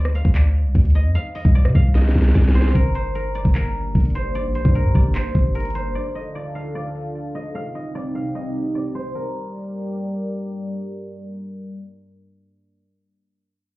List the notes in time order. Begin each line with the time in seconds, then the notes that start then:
Already playing: D2 A#4 C5 D5
0.05 cross-stick
0.15 F5, closed hi-hat
0.25 D2, kick
0.35 D5, clap, closed hi-hat
0.65 C2
0.75 D2, kick, closed hi-hat
0.80 closed hi-hat
0.85 closed hi-hat
0.90 closed hi-hat
0.95 D#5, closed hi-hat
1.05 F2
1.15 F5, closed hi-hat
1.35 D#5, open hi-hat
1.45 C2, kick
1.55 D5, closed hi-hat
1.65 C3, cross-stick
1.75 C2 F5, kick
1.95 D#5, snare, closed hi-hat
2.02 snare
2.08 snare
2.15 C2, snare
2.22 snare
2.28 snare
2.35 C2 D5, kick, snare, closed hi-hat
2.42 snare
2.48 snare
2.55 C5, snare, closed hi-hat
2.62 snare
2.68 snare
2.75 G1 A#3 D4 G4 A#4, kick, closed hi-hat
2.95 C5, closed hi-hat
3.15 A#4, closed hi-hat
3.35 D5, closed hi-hat
3.45 G1, kick
3.55 A#4, clap, closed hi-hat
3.95 G1, kick, closed hi-hat
4.00 closed hi-hat
4.05 closed hi-hat
4.10 closed hi-hat
4.15 C5, closed hi-hat
4.35 D5, closed hi-hat
4.45 A#1
4.55 C5, closed hi-hat
4.65 G2, kick
4.75 A#4, closed hi-hat
4.85 A#1
4.95 G1 D5, kick
5.15 C5, clap, closed hi-hat
5.35 G1, kick
5.55 A#4, closed hi-hat
5.60 closed hi-hat
5.65 closed hi-hat
5.70 closed hi-hat
5.75 C5, closed hi-hat
5.95 D3 D4 F4 A4 D5
6.15 D#5
6.35 D5
6.55 F5
6.75 D5
7.35 D#5
7.55 C3 C4 D#4 G4 F5
7.75 D#5
7.95 D5
8.15 F5
8.35 D#5
8.75 D5
8.95 C5
9.15 G3 G4 A#4 D5